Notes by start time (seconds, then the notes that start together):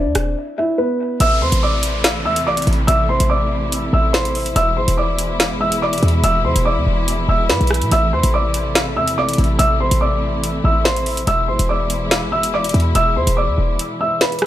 Already playing: D4 D5
0.06 E2
0.15 E1, cross-stick, closed hi-hat
0.58 E4 E5
0.78 B3 B4
1.20 A1 C3 E3 A3 E4 E5 E6, closed hi-hat, downlifter
1.41 E2 C5 C6
1.52 A1, closed hi-hat
1.63 D5 D6
1.83 closed hi-hat
2.04 snare, closed hi-hat
2.25 E2 E5 E6
2.36 closed hi-hat
2.46 A1 D5 D6
2.57 closed hi-hat
2.62 closed hi-hat
2.67 A1, closed hi-hat
2.73 closed hi-hat
2.87 A1 E5 E6, closed hi-hat
3.09 C5 C6
3.20 A1, closed hi-hat
3.30 D5 D6
3.72 closed hi-hat
3.93 A1 E5 E6
4.13 C5 C6, snare
4.25 closed hi-hat
4.35 closed hi-hat, open hi-hat
4.46 closed hi-hat
4.56 E1 B2 E3 G#3 E5 E6, closed hi-hat
4.77 G#1 C5 C6
4.88 E1, closed hi-hat
4.98 D5 D6
5.18 closed hi-hat
5.40 snare, closed hi-hat
5.51 G#1
5.61 E5 E6
5.72 closed hi-hat
5.77 E1
5.82 D5 D6
5.93 closed hi-hat
5.98 closed hi-hat
6.03 E2, closed hi-hat
6.08 closed hi-hat
6.24 E1 E5 E6, closed hi-hat
6.45 E2 C5 C6
6.56 E1, closed hi-hat
6.65 D5 D6
6.77 E2
6.87 E1
7.08 closed hi-hat
7.29 E1 E5 E6
7.49 G#2 B4 B5, snare
7.61 B1, closed hi-hat
7.67 cross-stick, closed hi-hat
7.74 closed hi-hat
7.82 B2, closed hi-hat
7.91 A1 C3 A3 E5 E6, closed hi-hat
8.12 E2 C5 C6
8.23 A1, closed hi-hat
8.34 D5 D6
8.54 closed hi-hat
8.75 snare, closed hi-hat
8.96 E2 E5 E6
9.08 closed hi-hat
9.17 A1 D5 D6
9.29 closed hi-hat
9.33 closed hi-hat
9.38 A1, closed hi-hat
9.44 closed hi-hat
9.59 A1 E5 E6, closed hi-hat
9.80 C5 C6
9.91 A1, closed hi-hat
10.01 D5 D6
10.44 closed hi-hat
10.64 A1 E5 E6
10.84 C5 C6, snare
10.96 closed hi-hat
11.06 closed hi-hat, open hi-hat
11.17 closed hi-hat
11.27 E1 B2 G#3 E4 E5 E6, closed hi-hat
11.48 G#1 C5 C6
11.59 E1, closed hi-hat
11.69 D5 D6
11.90 closed hi-hat
12.11 snare, closed hi-hat
12.22 G#1
12.32 E5 E6
12.43 closed hi-hat
12.48 E1
12.54 D5 D6
12.64 closed hi-hat
12.69 closed hi-hat
12.74 E2, closed hi-hat
12.80 closed hi-hat
12.95 E1 E5 E6, closed hi-hat
13.16 E2 C5 C6
13.27 E1, closed hi-hat
13.37 D5 D6
13.48 E2
13.58 E1
13.79 closed hi-hat
14.01 E5 E6
14.21 B4 B5, snare
14.32 closed hi-hat
14.39 cross-stick, closed hi-hat